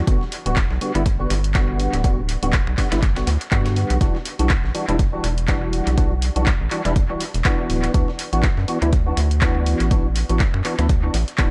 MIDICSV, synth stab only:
0, 0, Header, 1, 2, 480
1, 0, Start_track
1, 0, Key_signature, 1, "minor"
1, 0, Tempo, 491803
1, 72, Time_signature, 4, 2, 24, 8
1, 11229, End_track
2, 0, Start_track
2, 0, Title_t, "Synth stab"
2, 0, Program_c, 0, 62
2, 72, Note_on_c, 0, 50, 87
2, 72, Note_on_c, 0, 55, 81
2, 73, Note_on_c, 0, 59, 79
2, 73, Note_on_c, 0, 66, 95
2, 226, Note_off_c, 0, 50, 0
2, 226, Note_off_c, 0, 55, 0
2, 227, Note_off_c, 0, 59, 0
2, 227, Note_off_c, 0, 66, 0
2, 447, Note_on_c, 0, 50, 76
2, 448, Note_on_c, 0, 55, 70
2, 448, Note_on_c, 0, 59, 67
2, 448, Note_on_c, 0, 66, 84
2, 576, Note_off_c, 0, 50, 0
2, 576, Note_off_c, 0, 55, 0
2, 577, Note_off_c, 0, 59, 0
2, 577, Note_off_c, 0, 66, 0
2, 791, Note_on_c, 0, 50, 74
2, 792, Note_on_c, 0, 55, 69
2, 792, Note_on_c, 0, 59, 70
2, 793, Note_on_c, 0, 66, 82
2, 892, Note_off_c, 0, 50, 0
2, 892, Note_off_c, 0, 55, 0
2, 892, Note_off_c, 0, 59, 0
2, 892, Note_off_c, 0, 66, 0
2, 927, Note_on_c, 0, 50, 93
2, 927, Note_on_c, 0, 55, 84
2, 928, Note_on_c, 0, 59, 84
2, 928, Note_on_c, 0, 64, 100
2, 1004, Note_off_c, 0, 50, 0
2, 1005, Note_off_c, 0, 55, 0
2, 1005, Note_off_c, 0, 59, 0
2, 1005, Note_off_c, 0, 64, 0
2, 1167, Note_on_c, 0, 50, 77
2, 1167, Note_on_c, 0, 55, 67
2, 1168, Note_on_c, 0, 59, 70
2, 1168, Note_on_c, 0, 66, 84
2, 1296, Note_off_c, 0, 50, 0
2, 1296, Note_off_c, 0, 55, 0
2, 1297, Note_off_c, 0, 59, 0
2, 1297, Note_off_c, 0, 66, 0
2, 1512, Note_on_c, 0, 50, 93
2, 1512, Note_on_c, 0, 55, 84
2, 1512, Note_on_c, 0, 59, 83
2, 1513, Note_on_c, 0, 66, 103
2, 1967, Note_off_c, 0, 50, 0
2, 1967, Note_off_c, 0, 55, 0
2, 1967, Note_off_c, 0, 59, 0
2, 1967, Note_off_c, 0, 66, 0
2, 1992, Note_on_c, 0, 50, 86
2, 1992, Note_on_c, 0, 55, 80
2, 1992, Note_on_c, 0, 59, 81
2, 1993, Note_on_c, 0, 66, 93
2, 2146, Note_off_c, 0, 50, 0
2, 2146, Note_off_c, 0, 55, 0
2, 2146, Note_off_c, 0, 59, 0
2, 2147, Note_off_c, 0, 66, 0
2, 2367, Note_on_c, 0, 50, 77
2, 2367, Note_on_c, 0, 55, 68
2, 2368, Note_on_c, 0, 59, 68
2, 2368, Note_on_c, 0, 66, 81
2, 2496, Note_off_c, 0, 50, 0
2, 2496, Note_off_c, 0, 55, 0
2, 2497, Note_off_c, 0, 59, 0
2, 2497, Note_off_c, 0, 66, 0
2, 2712, Note_on_c, 0, 50, 75
2, 2712, Note_on_c, 0, 55, 69
2, 2713, Note_on_c, 0, 59, 69
2, 2713, Note_on_c, 0, 66, 82
2, 2812, Note_off_c, 0, 50, 0
2, 2812, Note_off_c, 0, 55, 0
2, 2812, Note_off_c, 0, 59, 0
2, 2812, Note_off_c, 0, 66, 0
2, 2847, Note_on_c, 0, 50, 91
2, 2847, Note_on_c, 0, 55, 82
2, 2848, Note_on_c, 0, 59, 84
2, 2848, Note_on_c, 0, 64, 102
2, 2924, Note_off_c, 0, 50, 0
2, 2925, Note_off_c, 0, 55, 0
2, 2925, Note_off_c, 0, 59, 0
2, 2925, Note_off_c, 0, 64, 0
2, 3087, Note_on_c, 0, 50, 75
2, 3088, Note_on_c, 0, 55, 68
2, 3088, Note_on_c, 0, 59, 69
2, 3089, Note_on_c, 0, 66, 84
2, 3216, Note_off_c, 0, 50, 0
2, 3216, Note_off_c, 0, 55, 0
2, 3217, Note_off_c, 0, 59, 0
2, 3217, Note_off_c, 0, 66, 0
2, 3432, Note_on_c, 0, 50, 94
2, 3432, Note_on_c, 0, 55, 85
2, 3433, Note_on_c, 0, 59, 83
2, 3433, Note_on_c, 0, 66, 103
2, 3887, Note_off_c, 0, 50, 0
2, 3887, Note_off_c, 0, 55, 0
2, 3887, Note_off_c, 0, 59, 0
2, 3887, Note_off_c, 0, 66, 0
2, 3912, Note_on_c, 0, 52, 86
2, 3912, Note_on_c, 0, 55, 79
2, 3912, Note_on_c, 0, 62, 78
2, 3913, Note_on_c, 0, 66, 94
2, 4066, Note_off_c, 0, 52, 0
2, 4066, Note_off_c, 0, 55, 0
2, 4067, Note_off_c, 0, 62, 0
2, 4067, Note_off_c, 0, 66, 0
2, 4287, Note_on_c, 0, 52, 74
2, 4287, Note_on_c, 0, 55, 69
2, 4288, Note_on_c, 0, 62, 70
2, 4288, Note_on_c, 0, 66, 84
2, 4416, Note_off_c, 0, 52, 0
2, 4416, Note_off_c, 0, 55, 0
2, 4417, Note_off_c, 0, 62, 0
2, 4417, Note_off_c, 0, 66, 0
2, 4632, Note_on_c, 0, 52, 74
2, 4632, Note_on_c, 0, 55, 69
2, 4633, Note_on_c, 0, 62, 68
2, 4633, Note_on_c, 0, 66, 85
2, 4732, Note_off_c, 0, 52, 0
2, 4732, Note_off_c, 0, 55, 0
2, 4732, Note_off_c, 0, 62, 0
2, 4733, Note_off_c, 0, 66, 0
2, 4767, Note_on_c, 0, 52, 89
2, 4768, Note_on_c, 0, 55, 82
2, 4768, Note_on_c, 0, 62, 83
2, 4769, Note_on_c, 0, 64, 102
2, 4844, Note_off_c, 0, 52, 0
2, 4845, Note_off_c, 0, 55, 0
2, 4845, Note_off_c, 0, 62, 0
2, 4845, Note_off_c, 0, 64, 0
2, 5007, Note_on_c, 0, 52, 74
2, 5008, Note_on_c, 0, 55, 68
2, 5008, Note_on_c, 0, 62, 72
2, 5009, Note_on_c, 0, 66, 85
2, 5136, Note_off_c, 0, 52, 0
2, 5136, Note_off_c, 0, 55, 0
2, 5137, Note_off_c, 0, 62, 0
2, 5137, Note_off_c, 0, 66, 0
2, 5352, Note_on_c, 0, 52, 91
2, 5353, Note_on_c, 0, 55, 85
2, 5353, Note_on_c, 0, 62, 84
2, 5353, Note_on_c, 0, 66, 102
2, 5807, Note_off_c, 0, 52, 0
2, 5807, Note_off_c, 0, 55, 0
2, 5808, Note_off_c, 0, 62, 0
2, 5808, Note_off_c, 0, 66, 0
2, 5833, Note_on_c, 0, 52, 87
2, 5833, Note_on_c, 0, 55, 81
2, 5833, Note_on_c, 0, 62, 80
2, 5834, Note_on_c, 0, 66, 93
2, 5987, Note_off_c, 0, 52, 0
2, 5987, Note_off_c, 0, 55, 0
2, 5987, Note_off_c, 0, 62, 0
2, 5987, Note_off_c, 0, 66, 0
2, 6208, Note_on_c, 0, 52, 75
2, 6208, Note_on_c, 0, 55, 68
2, 6209, Note_on_c, 0, 62, 68
2, 6209, Note_on_c, 0, 66, 85
2, 6337, Note_off_c, 0, 52, 0
2, 6337, Note_off_c, 0, 55, 0
2, 6337, Note_off_c, 0, 62, 0
2, 6337, Note_off_c, 0, 66, 0
2, 6552, Note_on_c, 0, 52, 73
2, 6553, Note_on_c, 0, 55, 69
2, 6553, Note_on_c, 0, 62, 70
2, 6554, Note_on_c, 0, 66, 83
2, 6652, Note_off_c, 0, 52, 0
2, 6652, Note_off_c, 0, 55, 0
2, 6652, Note_off_c, 0, 62, 0
2, 6653, Note_off_c, 0, 66, 0
2, 6688, Note_on_c, 0, 52, 91
2, 6688, Note_on_c, 0, 55, 84
2, 6688, Note_on_c, 0, 62, 84
2, 6689, Note_on_c, 0, 64, 100
2, 6765, Note_off_c, 0, 52, 0
2, 6765, Note_off_c, 0, 55, 0
2, 6765, Note_off_c, 0, 62, 0
2, 6765, Note_off_c, 0, 64, 0
2, 6927, Note_on_c, 0, 52, 75
2, 6928, Note_on_c, 0, 55, 72
2, 6928, Note_on_c, 0, 62, 70
2, 6929, Note_on_c, 0, 66, 83
2, 7056, Note_off_c, 0, 52, 0
2, 7056, Note_off_c, 0, 55, 0
2, 7057, Note_off_c, 0, 62, 0
2, 7057, Note_off_c, 0, 66, 0
2, 7272, Note_on_c, 0, 52, 93
2, 7273, Note_on_c, 0, 59, 87
2, 7273, Note_on_c, 0, 62, 86
2, 7273, Note_on_c, 0, 66, 102
2, 7727, Note_off_c, 0, 52, 0
2, 7727, Note_off_c, 0, 59, 0
2, 7727, Note_off_c, 0, 62, 0
2, 7728, Note_off_c, 0, 66, 0
2, 7752, Note_on_c, 0, 52, 85
2, 7752, Note_on_c, 0, 59, 80
2, 7753, Note_on_c, 0, 62, 80
2, 7753, Note_on_c, 0, 66, 96
2, 7906, Note_off_c, 0, 52, 0
2, 7906, Note_off_c, 0, 59, 0
2, 7907, Note_off_c, 0, 62, 0
2, 7907, Note_off_c, 0, 66, 0
2, 8127, Note_on_c, 0, 52, 75
2, 8128, Note_on_c, 0, 59, 71
2, 8128, Note_on_c, 0, 62, 69
2, 8128, Note_on_c, 0, 66, 86
2, 8256, Note_off_c, 0, 52, 0
2, 8256, Note_off_c, 0, 59, 0
2, 8256, Note_off_c, 0, 62, 0
2, 8257, Note_off_c, 0, 66, 0
2, 8472, Note_on_c, 0, 52, 75
2, 8472, Note_on_c, 0, 59, 69
2, 8472, Note_on_c, 0, 62, 69
2, 8473, Note_on_c, 0, 66, 82
2, 8572, Note_off_c, 0, 52, 0
2, 8572, Note_off_c, 0, 59, 0
2, 8572, Note_off_c, 0, 62, 0
2, 8572, Note_off_c, 0, 66, 0
2, 8608, Note_on_c, 0, 52, 91
2, 8608, Note_on_c, 0, 59, 82
2, 8608, Note_on_c, 0, 62, 84
2, 8609, Note_on_c, 0, 64, 101
2, 8685, Note_off_c, 0, 52, 0
2, 8685, Note_off_c, 0, 59, 0
2, 8685, Note_off_c, 0, 62, 0
2, 8685, Note_off_c, 0, 64, 0
2, 8847, Note_on_c, 0, 52, 75
2, 8847, Note_on_c, 0, 59, 69
2, 8848, Note_on_c, 0, 62, 70
2, 8848, Note_on_c, 0, 66, 84
2, 8976, Note_off_c, 0, 52, 0
2, 8976, Note_off_c, 0, 59, 0
2, 8976, Note_off_c, 0, 62, 0
2, 8977, Note_off_c, 0, 66, 0
2, 9191, Note_on_c, 0, 52, 96
2, 9192, Note_on_c, 0, 59, 86
2, 9192, Note_on_c, 0, 62, 85
2, 9193, Note_on_c, 0, 66, 103
2, 9647, Note_off_c, 0, 52, 0
2, 9647, Note_off_c, 0, 59, 0
2, 9647, Note_off_c, 0, 62, 0
2, 9647, Note_off_c, 0, 66, 0
2, 9672, Note_on_c, 0, 52, 86
2, 9672, Note_on_c, 0, 59, 81
2, 9672, Note_on_c, 0, 62, 78
2, 9673, Note_on_c, 0, 66, 97
2, 9826, Note_off_c, 0, 52, 0
2, 9826, Note_off_c, 0, 59, 0
2, 9826, Note_off_c, 0, 62, 0
2, 9827, Note_off_c, 0, 66, 0
2, 10047, Note_on_c, 0, 52, 74
2, 10048, Note_on_c, 0, 59, 68
2, 10048, Note_on_c, 0, 62, 68
2, 10048, Note_on_c, 0, 66, 83
2, 10176, Note_off_c, 0, 52, 0
2, 10176, Note_off_c, 0, 59, 0
2, 10177, Note_off_c, 0, 62, 0
2, 10177, Note_off_c, 0, 66, 0
2, 10391, Note_on_c, 0, 52, 75
2, 10392, Note_on_c, 0, 59, 68
2, 10392, Note_on_c, 0, 62, 70
2, 10393, Note_on_c, 0, 66, 84
2, 10492, Note_off_c, 0, 52, 0
2, 10492, Note_off_c, 0, 59, 0
2, 10492, Note_off_c, 0, 62, 0
2, 10492, Note_off_c, 0, 66, 0
2, 10527, Note_on_c, 0, 52, 93
2, 10527, Note_on_c, 0, 59, 84
2, 10528, Note_on_c, 0, 62, 84
2, 10528, Note_on_c, 0, 64, 104
2, 10604, Note_off_c, 0, 52, 0
2, 10604, Note_off_c, 0, 59, 0
2, 10605, Note_off_c, 0, 62, 0
2, 10605, Note_off_c, 0, 64, 0
2, 10766, Note_on_c, 0, 52, 75
2, 10767, Note_on_c, 0, 59, 71
2, 10767, Note_on_c, 0, 62, 69
2, 10768, Note_on_c, 0, 66, 83
2, 10896, Note_off_c, 0, 52, 0
2, 10896, Note_off_c, 0, 59, 0
2, 10896, Note_off_c, 0, 62, 0
2, 10897, Note_off_c, 0, 66, 0
2, 11111, Note_on_c, 0, 52, 94
2, 11112, Note_on_c, 0, 59, 86
2, 11112, Note_on_c, 0, 62, 87
2, 11113, Note_on_c, 0, 66, 103
2, 11229, Note_off_c, 0, 52, 0
2, 11229, Note_off_c, 0, 59, 0
2, 11229, Note_off_c, 0, 62, 0
2, 11229, Note_off_c, 0, 66, 0
2, 11229, End_track
0, 0, End_of_file